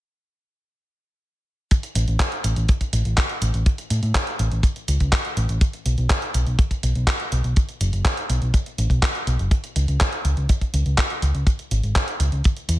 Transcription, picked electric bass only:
1.95 A1
2.08 A1
2.44 A1
2.56 A1
2.93 A1
3.05 A1
3.42 A1
3.54 A1
3.91 A2
4.03 A2
4.39 A1
4.52 A1
4.88 C#2
5.01 C#2
5.37 A1
5.49 A1
5.86 B1
5.98 B1
6.35 B1
6.47 B1
6.83 B1
6.95 B1
7.32 B1
7.44 B1
7.81 F#1
7.93 F#1
8.30 B1
8.42 B1
8.78 A1
8.90 B1
9.27 B1
9.39 F#1
9.76 C#2
9.88 C#2
10.25 C#2
10.37 C#2
10.74 C#2
10.86 C#2
11.22 C#2
11.35 C#2
11.71 G#1
11.83 G#1
12.20 C#2
12.32 C#2
12.69 E2

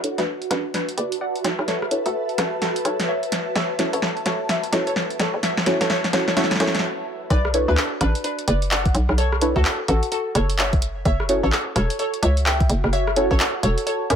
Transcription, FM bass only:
Already playing: B1
0.18 D2
0.51 A1
0.98 F#1
1.44 B1
1.59 B1
2.06 D2
2.38 A1
2.85 B1
3.56 F#1
3.93 A1
4.26 E1
4.73 C#2
5.20 F#1
5.34 F#1
5.81 A1
6.13 E1
6.60 F#2
7.30 B1
7.68 D2
8.01 A1
8.48 F#1
8.95 B1
9.09 B1
9.56 D2
9.88 A1
10.35 F#1
11.05 F#1
11.43 A1
11.76 E1
12.23 C#2
12.70 F#1
12.84 F#1
13.31 A1
13.63 E1
14.10 F#2

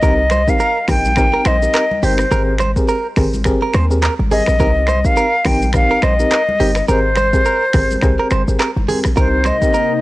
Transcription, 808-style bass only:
0.03 C2
0.88 A#1
1.46 A#1
2.03 G1
2.31 G#1
3.17 G#1
3.74 D#2
4.19 G#1
4.48 A#1
4.60 C2
5.46 A#1
6.03 A#1
6.60 G1
6.89 G#1
7.74 G#1
8.03 C2
8.31 G1
8.48 G#1
8.76 G1
9.05 A#1
9.17 C2

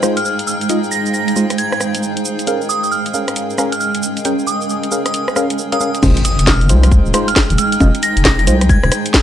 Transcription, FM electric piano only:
0.03 G#3 D#4 F4 C5
0.70 G#3 D#4 F4 D#5
1.36 G#3 D#4 F4 C5
2.47 C#4 G#4 A#4 F5
3.14 C#4 G#4 A#4 F5
3.58 C#4 G#4 A#4 F5
4.25 C#4 G#4 A#4 G5
4.92 C#4 G#4 A#4 F5
5.36 C#4 G#4 A#4 F5
5.72 C#4 G#4 A#4 F5
5.81 C#4 G#4 A#4 F5
6.03 G#3 D#4 F4 C5
6.70 G#3 D#4 F4 C5
7.14 G#3 D#4 F4 C5
7.81 G#3 D#4 F4 D#5
8.47 G#3 D#4 F4 C5

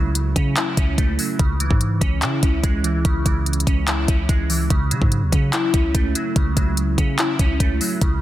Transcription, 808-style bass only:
Already playing: C#2
0.36 C#3
0.77 C#2
0.98 C#2
1.39 C#2
1.71 G#2
2.01 C#2
2.22 C#3
2.43 C#2
2.64 C#2
3.05 C#2
3.26 C#2
3.67 C#2
4.08 C#2
4.29 C#2
4.70 C#2
4.91 C#3
5.02 G#2
5.22 D#2
5.32 C#3
5.74 C#2
5.95 C#2
6.36 C#2
6.57 C#2
6.98 C#3
7.39 C#2
7.60 C#2
8.01 C#2

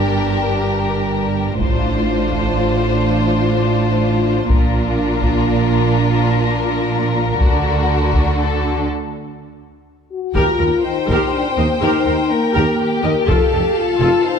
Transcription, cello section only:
Already playing: G2
1.59 A2
4.49 A#2
7.40 D3
10.35 D#2
10.60 D#2
11.09 D#2
11.58 D#2
11.82 D#2
12.07 D#2
12.56 D#2
13.04 D#2
13.28 F2
13.53 F2
14.00 F2

